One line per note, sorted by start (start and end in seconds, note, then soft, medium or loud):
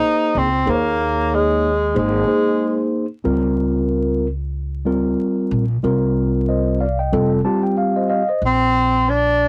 0.00 0.47 A#3 medium
0.00 0.39 D#4 loud
0.00 0.47 D#4 medium
0.00 0.48 G#4 medium
0.00 0.48 C5 medium
0.35 0.62 C#2 medium
0.35 0.71 C4 medium
0.66 1.92 D#2 medium
0.66 1.68 A#3 medium
0.66 1.68 D#4 medium
0.66 1.68 G#4 medium
0.66 0.74 C5 medium
0.70 1.35 A#3 medium
0.70 1.72 C#5 medium
1.34 1.97 G#3 medium
1.95 2.23 G#1 medium
1.95 2.90 G#3 medium
1.95 2.22 A#3 medium
1.95 2.22 D#4 medium
1.95 2.23 G#4 medium
1.95 2.23 C5 medium
2.27 3.05 A#3 medium
2.27 3.05 D#4 medium
2.27 3.05 G#4 medium
2.27 3.05 C5 medium
3.24 5.14 C#2 medium
3.24 4.26 G3 medium
3.24 4.26 C4 medium
3.24 4.26 F4 medium
3.24 4.27 A#4 medium
4.85 5.63 G3 medium
4.85 5.63 C4 medium
4.85 5.64 F4 medium
4.85 5.64 A#4 medium
5.51 5.78 A#1 medium
5.83 7.08 C2 medium
5.83 6.84 G3 medium
5.83 6.85 C4 medium
5.83 6.85 F4 medium
5.83 6.85 A#4 medium
6.49 6.79 C5 soft
6.49 6.79 D#5 medium
6.81 6.98 D5 medium
6.81 6.98 F5 medium
6.99 7.30 D#5 soft
6.99 7.29 G5 medium
7.12 7.39 F1 medium
7.12 7.39 G3 medium
7.12 7.39 C4 medium
7.12 7.39 F4 medium
7.12 7.39 A4 medium
7.44 8.22 G3 medium
7.44 8.22 C4 medium
7.44 8.22 F4 medium
7.44 8.22 G4 medium
7.44 7.62 A5 medium
7.63 7.76 G5 medium
7.78 8.07 F5 medium
7.96 8.09 C5 soft
7.96 8.08 D#5 medium
8.10 8.28 D#5 medium
8.10 8.27 F5 medium
8.29 8.41 C5 soft
8.29 8.41 D#5 medium
8.42 9.48 A#1 medium
8.46 9.11 C4 medium
9.09 9.48 D4 medium